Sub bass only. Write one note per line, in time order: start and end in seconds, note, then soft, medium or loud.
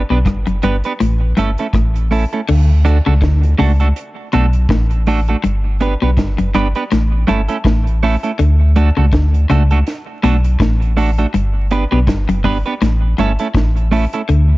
0.10 0.24 B1 loud
0.26 0.45 G1 medium
0.48 0.62 F#1 medium
0.64 0.82 G1 medium
1.01 1.34 A1 loud
1.38 1.57 G1 medium
1.74 2.25 A1 medium
2.50 3.01 D2 loud
3.07 3.21 C#2 medium
3.22 3.55 D2 medium
3.60 3.93 C#2 medium
4.35 4.67 B1 medium
4.70 5.35 A1 medium
5.45 5.96 G1 loud
6.03 6.16 B1 medium
6.18 6.36 G1 medium
6.40 6.54 F#1 loud
6.55 6.74 G1 medium
6.93 7.25 A1 loud
7.29 7.48 G1 medium
7.65 8.17 A1 medium
8.40 8.91 D2 loud
8.98 9.12 C#2 loud
9.13 9.46 D2 medium
9.51 9.83 C#2 medium
10.24 10.57 B1 medium
10.60 11.26 A1 medium
11.35 11.86 G1 loud
11.93 12.06 B1 medium
12.08 12.26 G1 medium
12.29 12.43 F#1 medium
12.45 12.63 G1 medium
12.82 13.15 A1 loud
13.19 13.37 G1 loud
13.55 14.07 A1 medium
14.29 14.58 D2 loud